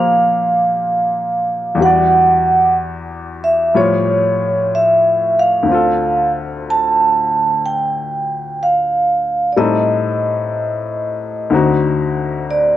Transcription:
Already playing: upright piano A#2 F3 A#3 C4 G4 A4 C5 D5, vibraphone F5
1.75 upright piano E2 E3
1.81 upright piano G3 F#4, vibraphone F#5
1.86 upright piano D5
3.44 vibraphone E5
3.74 upright piano A2 F3 G3 F4 C#5, vibraphone C#5
4.75 vibraphone E5
5.39 vibraphone F5
5.63 upright piano D2 D3
5.68 upright piano C4 F4
5.74 upright piano A4
6.70 vibraphone A5
7.66 vibraphone G5
8.63 vibraphone F5
9.53 upright piano G3, vibraphone D5
9.57 upright piano A2 C4 D#4 A4, vibraphone D#5
11.50 upright piano D2 D3 C4 D#4
11.54 upright piano F#4
12.50 vibraphone D5

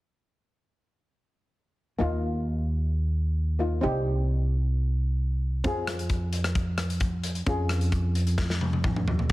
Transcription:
1.98 upright bass D#2, steel pan A#3 D#4 F4
3.59 steel pan A#3 D#4 F4
3.81 upright bass C2, steel pan C4 D#4 G4
5.64 upright bass F2, steel pan C4 F4 G#4, kick, closed hi-hat
5.87 cross-stick, closed hi-hat
5.99 closed hi-hat
6.09 kick, closed hi-hat
6.33 closed hi-hat
6.44 cross-stick, closed hi-hat
6.55 kick, closed hi-hat
6.78 cross-stick, closed hi-hat
6.90 closed hi-hat
7.00 kick, closed hi-hat
7.24 closed hi-hat
7.35 closed hi-hat
7.46 upright bass F2, steel pan C#4 F4 G#4, kick, closed hi-hat
7.69 cross-stick, closed hi-hat
7.81 closed hi-hat
7.92 kick, closed hi-hat
8.15 closed hi-hat
8.27 closed hi-hat
8.38 kick, snare
8.50 snare
8.61 high tom
8.73 high tom
8.84 kick, mid tom
8.96 mid tom
9.08 floor tom
9.19 floor tom
9.29 closed hi-hat

